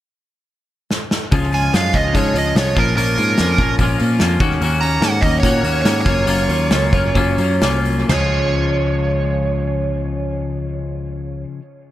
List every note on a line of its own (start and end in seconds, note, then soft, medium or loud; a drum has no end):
0.91 snare medium
1.11 snare medium
1.31 1.69 C#2 medium
1.31 1.74 C#3 medium
1.31 1.72 F3 medium
1.31 1.53 G#3 medium
1.31 1.53 C#4 medium
1.31 1.52 F4 medium
1.31 kick loud
1.31 open hi-hat medium
1.52 1.72 G#3 medium
1.52 1.74 C#4 medium
1.52 1.75 F4 medium
1.52 1.75 G#5 medium
1.52 open hi-hat soft
1.73 1.92 F#2 medium
1.73 2.13 F3 medium
1.73 1.94 G#3 medium
1.73 1.93 C#4 medium
1.73 1.92 F4 medium
1.73 1.96 F5 medium
1.73 snare medium
1.73 open hi-hat medium
1.93 2.12 C#2 medium
1.93 2.13 G#3 medium
1.93 2.15 C#4 medium
1.93 2.14 F4 medium
1.93 2.14 D#5 medium
1.93 kick medium
1.93 open hi-hat soft
2.13 2.33 G#2 medium
2.13 2.55 C#3 medium
2.13 2.54 F3 medium
2.13 2.36 G#3 medium
2.13 2.35 C#4 medium
2.13 2.33 F4 medium
2.13 2.37 C#5 medium
2.13 kick medium
2.13 open hi-hat medium
2.34 2.53 C#2 medium
2.34 2.55 G#3 medium
2.34 2.57 C#4 medium
2.34 2.57 F4 medium
2.34 open hi-hat soft
2.38 2.57 D#5 medium
2.55 2.74 C2 medium
2.55 2.75 F3 medium
2.55 2.76 G#3 medium
2.55 2.75 C#4 medium
2.55 2.74 F4 medium
2.55 2.78 C#5 medium
2.55 snare loud
2.55 open hi-hat medium
2.75 2.95 A#1 medium
2.75 2.94 A#2 medium
2.75 2.95 F3 medium
2.75 2.97 A#3 medium
2.75 2.97 C#4 medium
2.75 2.97 F4 medium
2.75 2.96 A#4 medium
2.75 kick medium
2.75 open hi-hat soft
2.95 3.15 A#1 medium
2.95 3.37 A#2 medium
2.95 3.37 F3 medium
2.95 3.20 A#3 medium
2.95 3.18 C#4 medium
2.95 3.16 F4 medium
2.95 3.75 A#4 medium
2.95 open hi-hat medium
3.17 3.36 G#2 medium
3.17 3.39 A#3 soft
3.17 3.39 C#4 medium
3.17 3.39 F4 medium
3.17 open hi-hat soft
3.38 3.57 F2 medium
3.38 3.79 F3 medium
3.38 3.60 A#3 medium
3.38 3.59 C#4 medium
3.38 3.57 F4 medium
3.38 snare medium
3.38 open hi-hat medium
3.58 3.76 A#1 medium
3.58 3.81 A#3 medium
3.58 3.81 C#4 medium
3.58 3.81 F4 medium
3.58 kick medium
3.58 open hi-hat soft
3.79 3.97 A#1 medium
3.79 4.20 A#2 medium
3.79 4.18 F3 medium
3.79 4.00 A#3 medium
3.79 3.99 C#4 loud
3.79 3.97 F4 loud
3.79 kick medium
3.79 open hi-hat medium
3.98 4.19 A#2 medium
3.98 4.21 A#3 medium
3.98 4.21 C#4 medium
3.98 4.21 F4 medium
3.98 open hi-hat soft
4.19 4.39 F2 medium
4.19 4.39 F3 medium
4.19 4.42 A#3 medium
4.19 4.41 C#4 medium
4.19 4.40 F4 medium
4.19 snare loud
4.19 open hi-hat medium
4.40 4.58 D#2 medium
4.40 4.60 D#3 medium
4.40 4.62 A#3 medium
4.40 4.63 C#4 medium
4.40 4.64 F#4 medium
4.40 kick medium
4.40 open hi-hat soft
4.61 4.97 D#2 medium
4.61 5.00 D#3 medium
4.61 4.84 A#3 medium
4.61 4.82 C#4 medium
4.61 4.81 F#4 medium
4.61 open hi-hat medium
4.81 5.02 A#3 medium
4.81 5.03 C#4 medium
4.81 5.04 F#4 medium
4.81 5.00 A#5 medium
4.81 open hi-hat soft
5.01 5.20 G#2 medium
5.01 5.42 D#3 medium
5.01 5.25 A#3 medium
5.01 5.23 C#4 medium
5.01 5.22 F#4 medium
5.01 5.23 F#5 medium
5.01 snare medium
5.01 open hi-hat medium
5.21 5.41 D#2 medium
5.21 5.45 C#4 medium
5.21 5.45 F#4 medium
5.21 5.39 D#5 medium
5.21 kick medium
5.21 open hi-hat soft
5.25 5.43 A#3 medium
5.40 5.62 A#2 medium
5.40 5.83 D#3 medium
5.40 5.80 C#5 medium
5.40 kick medium
5.44 5.67 A#3 medium
5.44 5.66 C#4 medium
5.44 5.64 F#4 loud
5.44 open hi-hat medium
5.63 5.82 D#2 medium
5.63 5.86 C#4 medium
5.63 5.86 F#4 medium
5.63 open hi-hat soft
5.68 5.84 A#3 soft
5.82 6.04 G#2 medium
5.82 6.05 D#3 medium
5.82 6.05 A#3 medium
5.82 6.00 C#5 medium
5.82 snare medium
5.82 open hi-hat medium
5.86 6.06 C#4 medium
5.86 6.04 F#4 medium
6.01 6.28 F4 medium
6.01 7.79 C#5 medium
6.06 6.25 F#1 medium
6.06 6.25 F#3 medium
6.06 6.26 A#3 medium
6.06 6.27 C#4 medium
6.06 kick medium
6.06 open hi-hat soft
6.26 6.46 F#1 medium
6.26 6.69 F#3 medium
6.26 6.51 A#3 medium
6.26 6.50 C#4 medium
6.26 6.48 F4 medium
6.26 open hi-hat medium
6.49 6.68 D#2 medium
6.49 6.71 A#3 medium
6.49 6.72 C#4 medium
6.49 6.73 F4 medium
6.49 open hi-hat soft
6.71 6.91 C#2 medium
6.71 7.13 F#3 medium
6.71 6.95 A#3 medium
6.71 6.94 C#4 medium
6.71 6.93 F4 medium
6.71 snare loud
6.71 open hi-hat medium
6.93 7.13 F#1 medium
6.93 7.15 A#3 soft
6.93 7.15 C#4 medium
6.93 7.16 F4 medium
6.93 kick medium
6.93 open hi-hat soft
7.15 7.36 F#1 medium
7.15 7.60 F#3 medium
7.15 7.40 A#3 medium
7.15 7.39 C#4 loud
7.15 7.38 F4 medium
7.15 kick medium
7.15 open hi-hat medium
7.38 7.59 F#2 medium
7.38 7.61 A#3 medium
7.38 7.62 C#4 medium
7.38 7.63 F4 medium
7.38 open hi-hat soft
7.61 8.03 C2 medium
7.61 8.08 F#3 medium
7.61 8.08 A#3 medium
7.61 8.09 C#4 medium
7.61 8.09 F4 medium
7.61 snare loud
7.61 open hi-hat medium
7.85 open hi-hat soft
8.09 11.44 C#2 medium
8.09 11.59 C#3 medium
8.09 11.60 F3 medium
8.09 11.61 G#3 medium
8.09 11.62 C#4 medium
8.09 11.62 F4 medium
8.09 11.44 C#5 medium
8.09 snare medium
8.09 floor tom medium
8.09 crash medium